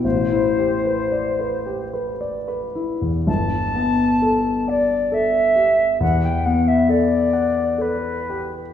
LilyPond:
<<
  \new Staff \with { instrumentName = "Flute" } { \time 3/4 \key g \major \tempo 4 = 62 c''2 r4 | a''4. d''8 e''4 | fis''16 g''16 fis''16 e''16 d''4 b'4 | }
  \new Staff \with { instrumentName = "Grand piano" } { \time 3/4 \key g \major a,,16 e'16 g'16 b'16 d''16 b'16 g'16 b'16 d''16 b'16 e'16 e,16 | g,,8 b8 a'8 d''8 a'8 g'8 | e,8 b8 a'8 fis''8 a'8 g'8 | }
>>